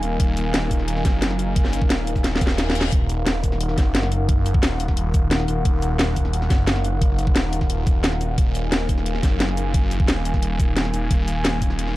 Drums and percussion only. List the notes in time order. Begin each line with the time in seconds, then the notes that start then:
0.03 closed hi-hat, shaker
0.20 kick, closed hi-hat
0.37 closed hi-hat, shaker
0.54 snare, closed hi-hat
0.71 kick, closed hi-hat, shaker
0.79 snare
0.88 closed hi-hat
0.96 snare
1.05 kick, snare, closed hi-hat, shaker
1.22 snare, closed hi-hat
1.31 snare
1.39 closed hi-hat, shaker
1.56 kick, closed hi-hat
1.65 snare
1.73 closed hi-hat, shaker
1.82 kick
1.90 snare, closed hi-hat
2.07 closed hi-hat, shaker
2.16 kick, snare, shaker
2.24 snare, closed hi-hat
2.36 snare
2.41 kick, closed hi-hat, shaker
2.47 snare, shaker
2.58 snare, closed hi-hat
2.70 snare
2.75 closed hi-hat, shaker
2.81 snare
2.92 kick, closed hi-hat
3.09 closed hi-hat, shaker
3.26 snare, closed hi-hat
3.44 kick, closed hi-hat, shaker
3.52 snare
3.61 closed hi-hat
3.69 snare
3.78 kick, snare, closed hi-hat, shaker
3.95 snare, closed hi-hat
4.03 snare
4.12 closed hi-hat, shaker
4.29 kick, closed hi-hat
4.46 closed hi-hat, shaker
4.54 kick
4.63 snare, closed hi-hat
4.80 open hi-hat, shaker
4.88 kick, snare
4.97 closed hi-hat
5.14 kick, closed hi-hat, shaker
5.31 snare, closed hi-hat
5.40 snare
5.48 closed hi-hat, shaker
5.65 kick, closed hi-hat
5.82 closed hi-hat, shaker
5.99 snare, closed hi-hat
6.16 kick, closed hi-hat, shaker
6.25 snare
6.33 closed hi-hat
6.42 snare
6.50 kick, snare, closed hi-hat, shaker
6.67 snare, closed hi-hat
6.76 snare
6.84 closed hi-hat, shaker
7.01 kick, closed hi-hat
7.19 closed hi-hat, shaker
7.27 kick
7.36 snare, closed hi-hat
7.53 open hi-hat, shaker
7.61 kick, snare
7.70 closed hi-hat
7.87 kick, closed hi-hat, shaker
8.04 snare, closed hi-hat
8.12 snare
8.21 closed hi-hat, shaker
8.38 kick, closed hi-hat
8.55 closed hi-hat, shaker
8.72 snare, closed hi-hat
8.89 kick, closed hi-hat, shaker
8.98 snare
9.06 closed hi-hat
9.15 snare
9.23 kick, snare, closed hi-hat, shaker
9.40 snare, closed hi-hat
9.49 snare
9.57 closed hi-hat, shaker
9.74 kick, closed hi-hat
9.91 closed hi-hat, shaker
10.00 kick
10.08 snare, closed hi-hat
10.25 open hi-hat, shaker
10.34 kick, snare
10.43 closed hi-hat
10.59 kick, closed hi-hat, shaker
10.77 snare, closed hi-hat
10.85 snare
10.94 closed hi-hat, shaker
11.11 kick, closed hi-hat
11.28 closed hi-hat, shaker
11.45 snare, closed hi-hat
11.62 kick, closed hi-hat, shaker
11.70 snare
11.79 closed hi-hat
11.87 snare